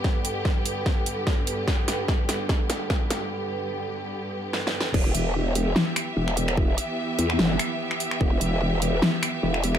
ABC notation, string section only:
X:1
M:4/4
L:1/8
Q:"Swing 16ths" 1/4=147
K:Em
V:1 name="String section"
[G,,D,B,G]8- | [G,,D,B,G]8- | [G,,D,B,G]8 | [E,B,Ge]8- |
[E,B,Ge]8- | [E,B,Ge]8 |]